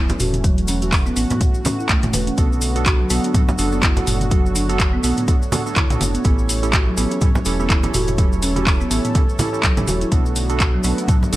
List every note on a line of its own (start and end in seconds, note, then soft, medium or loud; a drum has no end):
0.00 0.15 E1 loud
0.00 2.34 E3 medium
0.00 6.21 A3 medium
0.00 2.34 C#4 medium
0.09 closed hi-hat soft
0.09 low conga medium
0.09 cabasa soft
0.20 1.11 E1 loud
0.20 0.32 F#4 loud
0.20 mid tom loud
0.20 open hi-hat medium
0.20 cabasa medium
0.34 closed hi-hat soft
0.34 mid tom medium
0.34 high conga medium
0.34 cabasa soft
0.44 0.57 F#3 medium
0.44 2.36 F#4 loud
0.44 kick loud
0.44 closed hi-hat medium
0.44 high conga medium
0.44 cabasa medium
0.58 closed hi-hat soft
0.58 cabasa soft
0.68 0.81 C#4 loud
0.68 open hi-hat medium
0.68 cabasa medium
0.82 0.92 F#4 medium
0.82 closed hi-hat soft
0.82 cabasa soft
0.92 kick loud
0.92 clap loud
0.92 open hi-hat medium
0.92 cabasa medium
1.06 1.15 B3 loud
1.06 cabasa soft
1.16 1.26 A1 loud
1.16 1.29 B3 loud
1.16 open hi-hat medium
1.16 cabasa medium
1.30 1.40 B3 medium
1.30 closed hi-hat medium
1.30 mid tom medium
1.30 low conga medium
1.30 cabasa soft
1.41 kick loud
1.41 closed hi-hat medium
1.41 high conga medium
1.41 cabasa medium
1.54 cabasa soft
1.65 1.72 C#4 loud
1.65 mid tom medium
1.65 open hi-hat medium
1.65 high conga medium
1.65 low conga medium
1.65 cabasa medium
1.79 1.88 E4 medium
1.79 cabasa soft
1.89 1.99 C#2 medium
1.89 1.97 A3 medium
1.89 kick loud
1.89 clap loud
1.89 closed hi-hat medium
1.89 cabasa medium
2.03 2.10 A1 loud
2.03 2.09 A3 medium
2.03 closed hi-hat soft
2.03 mid tom medium
2.03 high conga medium
2.03 cabasa soft
2.13 2.31 E1 medium
2.13 2.21 B4 medium
2.13 open hi-hat medium
2.13 high conga medium
2.13 cabasa loud
2.27 2.37 C#4 medium
2.27 closed hi-hat soft
2.27 cabasa soft
2.38 3.05 B1 loud
2.38 6.21 D3 medium
2.38 6.21 F#3 medium
2.38 2.72 B3 medium
2.38 4.29 B3 medium
2.38 2.50 B3 medium
2.38 2.72 D4 medium
2.38 2.72 F#4 medium
2.38 6.21 F#4 medium
2.38 2.72 A4 loud
2.38 kick loud
2.38 closed hi-hat medium
2.38 cabasa medium
2.53 cabasa soft
2.61 open hi-hat medium
2.61 cabasa medium
2.76 3.08 B3 medium
2.76 3.08 D4 medium
2.76 3.08 F#4 medium
2.76 3.08 A4 loud
2.76 closed hi-hat soft
2.76 cabasa soft
2.86 2.99 F#4 medium
2.86 kick loud
2.86 clap loud
2.86 closed hi-hat medium
2.86 cabasa medium
3.00 3.05 F#3 medium
3.10 3.20 B1 loud
3.10 3.23 B3 loud
3.10 3.32 B3 medium
3.10 3.32 D4 medium
3.10 3.32 F#4 medium
3.10 3.32 A4 medium
3.10 open hi-hat loud
3.10 cabasa medium
3.24 3.30 D4 medium
3.24 closed hi-hat soft
3.24 cabasa soft
3.34 3.47 F#3 medium
3.34 3.42 B3 loud
3.34 3.42 D4 medium
3.34 3.41 F#4 medium
3.34 3.41 A4 loud
3.34 kick loud
3.34 closed hi-hat medium
3.34 mid tom medium
3.34 high conga medium
3.34 cabasa medium
3.49 low conga loud
3.49 cabasa soft
3.58 4.02 F#1 loud
3.58 3.69 B3 medium
3.58 3.69 D4 medium
3.58 3.72 D4 medium
3.58 3.69 F#4 medium
3.58 3.69 A4 loud
3.58 open hi-hat loud
3.58 cabasa loud
3.72 3.93 B3 medium
3.72 3.82 B3 medium
3.72 3.93 D4 medium
3.72 3.93 F#4 medium
3.72 3.93 A4 medium
3.72 cabasa soft
3.82 3.96 E4 medium
3.82 kick loud
3.82 clap loud
3.82 closed hi-hat medium
3.82 cabasa medium
3.97 4.29 B3 medium
3.97 4.29 D4 medium
3.97 4.29 F#4 medium
3.97 4.29 A4 loud
3.97 closed hi-hat soft
3.97 low conga loud
3.97 cabasa soft
4.07 4.99 F#1 loud
4.07 4.20 F#4 loud
4.07 mid tom medium
4.07 open hi-hat loud
4.07 cabasa medium
4.21 closed hi-hat soft
4.21 mid tom medium
4.21 high conga medium
4.21 cabasa soft
4.31 4.44 F#3 medium
4.31 4.66 B3 medium
4.31 4.66 D4 medium
4.31 4.66 F#4 medium
4.31 4.66 A4 loud
4.31 10.08 C#5 medium
4.31 kick loud
4.31 closed hi-hat medium
4.31 cabasa soft
4.46 cabasa soft
4.55 4.68 D4 loud
4.55 open hi-hat medium
4.55 cabasa loud
4.69 5.01 B3 medium
4.69 5.01 D4 medium
4.69 4.79 F#4 medium
4.69 5.01 F#4 medium
4.69 5.01 A4 loud
4.69 closed hi-hat soft
4.69 cabasa soft
4.79 kick loud
4.79 clap loud
4.79 closed hi-hat medium
4.79 cabasa medium
4.93 5.02 B3 loud
5.03 5.13 B1 loud
5.03 5.16 B3 loud
5.03 5.25 B3 medium
5.03 5.25 D4 medium
5.03 5.25 F#4 medium
5.03 5.25 A4 medium
5.03 open hi-hat medium
5.03 cabasa medium
5.17 5.27 B3 medium
5.17 closed hi-hat soft
5.17 mid tom medium
5.17 cabasa soft
5.28 5.35 B3 loud
5.28 5.35 D4 medium
5.28 5.35 F#4 medium
5.28 5.35 A4 loud
5.28 kick loud
5.28 closed hi-hat medium
5.28 high conga medium
5.28 cabasa medium
5.42 cabasa soft
5.52 5.63 B3 medium
5.52 5.63 D4 medium
5.52 5.63 F#4 medium
5.52 5.63 A4 loud
5.52 mid tom medium
5.52 open hi-hat loud
5.52 high conga medium
5.52 low conga loud
5.52 cabasa medium
5.66 5.87 B3 medium
5.66 5.87 D4 medium
5.66 5.87 F#4 medium
5.66 5.87 A4 medium
5.66 cabasa soft
5.76 5.86 D2 loud
5.76 5.89 E4 medium
5.76 kick loud
5.76 clap loud
5.76 closed hi-hat medium
5.76 cabasa soft
5.90 5.97 B1 medium
5.90 6.22 B3 medium
5.90 6.22 D4 medium
5.90 6.22 F#4 medium
5.90 6.22 A4 loud
5.90 closed hi-hat soft
5.90 mid tom medium
5.90 high conga loud
5.90 cabasa soft
6.01 6.18 F#1 medium
6.01 open hi-hat loud
6.01 high conga medium
6.01 cabasa medium
6.14 6.24 B3 medium
6.14 closed hi-hat soft
6.14 cabasa soft
6.24 6.92 A1 loud
6.24 10.08 E3 medium
6.24 11.36 A3 medium
6.24 6.37 B3 medium
6.24 6.59 C#4 medium
6.24 6.59 E4 medium
6.24 6.59 G4 medium
6.24 6.59 A4 loud
6.24 kick loud
6.24 closed hi-hat medium
6.24 cabasa medium
6.38 cabasa soft
6.49 open hi-hat medium
6.49 cabasa loud
6.63 6.95 C#4 medium
6.63 6.95 E4 medium
6.63 6.95 G4 medium
6.63 6.95 A4 medium
6.63 closed hi-hat soft
6.63 cabasa soft
6.73 6.86 F#4 medium
6.73 kick loud
6.73 clap loud
6.73 closed hi-hat medium
6.73 cabasa medium
6.87 6.93 F#3 medium
6.97 7.07 A1 loud
6.97 7.10 B3 loud
6.97 7.19 C#4 medium
6.97 7.19 E4 medium
6.97 7.19 G4 medium
6.97 7.19 A4 medium
6.97 open hi-hat loud
6.97 cabasa loud
7.11 7.17 C#4 medium
7.11 closed hi-hat soft
7.11 cabasa soft
7.21 7.34 F#3 medium
7.21 7.29 C#4 loud
7.21 7.29 E4 medium
7.21 7.29 G4 medium
7.21 7.29 A4 loud
7.21 kick loud
7.21 closed hi-hat medium
7.21 mid tom medium
7.21 high conga medium
7.21 cabasa medium
7.35 low conga loud
7.35 cabasa soft
7.45 7.89 E1 loud
7.45 7.56 C#4 medium
7.45 7.59 C#4 medium
7.45 7.56 E4 medium
7.45 7.56 G4 medium
7.45 7.56 A4 loud
7.45 open hi-hat medium
7.45 cabasa medium
7.59 7.69 B3 medium
7.59 7.80 C#4 medium
7.59 7.80 E4 medium
7.59 7.80 G4 medium
7.59 7.80 A4 medium
7.59 cabasa soft
7.70 7.83 E4 medium
7.70 kick loud
7.70 clap loud
7.70 closed hi-hat medium
7.70 cabasa soft
7.83 8.16 C#4 medium
7.83 8.16 E4 medium
7.83 8.16 G4 medium
7.83 8.16 A4 loud
7.83 closed hi-hat soft
7.83 low conga medium
7.83 cabasa soft
7.94 8.86 E1 loud
7.94 8.07 F#4 loud
7.94 mid tom medium
7.94 open hi-hat loud
7.94 cabasa loud
8.08 closed hi-hat soft
8.08 mid tom medium
8.08 high conga medium
8.08 cabasa soft
8.18 8.31 F#3 medium
8.18 8.53 C#4 medium
8.18 8.53 E4 medium
8.18 8.53 G4 medium
8.18 10.10 A4 medium
8.18 8.53 A4 loud
8.18 kick loud
8.18 closed hi-hat medium
8.18 cabasa medium
8.33 cabasa soft
8.42 8.55 C#4 loud
8.42 open hi-hat medium
8.42 cabasa loud
8.56 8.88 C#4 medium
8.56 8.88 E4 medium
8.56 8.66 F#4 medium
8.56 8.88 G4 medium
8.56 8.88 A4 loud
8.56 closed hi-hat soft
8.56 high conga medium
8.56 cabasa soft
8.67 kick loud
8.67 clap loud
8.67 open hi-hat medium
8.67 cabasa medium
8.81 8.90 B3 loud
8.81 cabasa soft
8.91 9.00 A1 loud
8.91 9.03 B3 loud
8.91 9.12 C#4 medium
8.91 9.12 E4 medium
8.91 9.12 G4 medium
8.91 9.12 A4 medium
8.91 open hi-hat medium
8.91 cabasa loud
9.05 9.14 B3 medium
9.05 closed hi-hat soft
9.05 mid tom medium
9.05 cabasa soft
9.15 9.22 C#4 medium
9.15 9.22 E4 medium
9.15 9.22 G4 medium
9.15 9.22 A4 loud
9.15 kick loud
9.15 closed hi-hat medium
9.15 high conga loud
9.15 cabasa medium
9.29 cabasa soft
9.39 9.50 C#4 medium
9.39 9.50 E4 medium
9.39 9.52 E4 medium
9.39 9.50 G4 medium
9.39 9.50 A4 loud
9.39 mid tom medium
9.39 open hi-hat medium
9.39 high conga loud
9.39 low conga medium
9.39 cabasa medium
9.53 9.74 C#4 medium
9.53 9.74 E4 medium
9.53 9.74 G4 medium
9.53 9.74 A4 medium
9.53 cabasa soft
9.63 9.73 C#2 loud
9.63 9.71 F#3 loud
9.63 kick loud
9.63 clap loud
9.63 closed hi-hat medium
9.63 cabasa medium
9.77 9.84 A1 loud
9.77 10.09 C#4 medium
9.77 10.09 E4 medium
9.77 10.09 G4 medium
9.77 10.09 A4 loud
9.77 closed hi-hat soft
9.77 mid tom medium
9.77 high conga loud
9.77 cabasa soft
9.88 10.05 E1 medium
9.88 10.00 F#4 loud
9.88 open hi-hat medium
9.88 high conga loud
9.88 cabasa medium
10.01 10.11 E4 medium
10.01 closed hi-hat soft
10.01 cabasa soft
10.12 10.79 B1 loud
10.12 11.36 D3 medium
10.12 11.36 F#3 medium
10.12 10.46 B3 medium
10.12 11.36 B3 medium
10.12 10.24 B3 medium
10.12 10.46 D4 medium
10.12 10.46 F#4 medium
10.12 11.36 F#4 loud
10.12 10.46 A4 medium
10.12 kick loud
10.12 closed hi-hat medium
10.12 cabasa medium
10.26 cabasa soft
10.36 open hi-hat medium
10.36 cabasa medium
10.49 10.82 B3 medium
10.49 10.82 D4 medium
10.49 10.82 F#4 medium
10.49 10.82 A4 loud
10.49 closed hi-hat soft
10.49 cabasa soft
10.60 10.73 F#4 medium
10.60 kick loud
10.60 clap loud
10.60 closed hi-hat medium
10.60 cabasa medium
10.74 10.80 F#3 medium
10.84 10.94 B1 loud
10.84 11.06 B3 medium
10.84 10.98 B3 loud
10.84 11.06 D4 medium
10.84 11.06 F#4 medium
10.84 11.06 A4 medium
10.84 open hi-hat medium
10.84 cabasa medium
10.98 11.04 D4 medium
10.98 closed hi-hat soft
10.98 cabasa soft
11.08 11.21 F#3 medium
11.08 11.16 B3 loud
11.08 11.16 D4 medium
11.08 11.16 F#4 medium
11.08 11.16 A4 loud
11.08 kick loud
11.08 closed hi-hat medium
11.08 mid tom medium
11.08 high conga medium
11.08 cabasa medium
11.23 low conga medium
11.23 cabasa soft
11.32 11.36 F#1 loud
11.32 11.36 B3 medium
11.32 11.36 D4 medium
11.32 11.36 F#4 medium
11.32 11.36 A4 loud
11.32 open hi-hat medium
11.32 cabasa loud